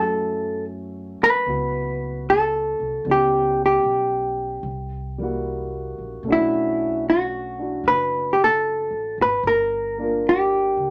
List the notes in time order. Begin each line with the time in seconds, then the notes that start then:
Already playing: F#2 F#3 A3 C#4 E4 A4
1.21 B4, muted upright bass stroke
1.46 C#2 B3 E4 F#4
2.30 A4
2.80 C2
3.05 C#2 G3 B3 C#4 E4
3.11 G4
3.66 G4
3.84 B1
4.63 C2
5.18 G3 A#3 E4
5.23 F#4
5.98 A#1
6.23 B1 A3 C#4
6.29 D4 E4 F#4
7.10 F#4
7.59 D4 E4 F#4
7.84 F#1
7.88 B4
8.33 G4
8.44 A4
8.91 A1
9.18 G#1
9.22 B4
9.43 G1 A#4
9.98 A#3 D4 F4
10.03 A#4
10.29 G4
10.77 C#2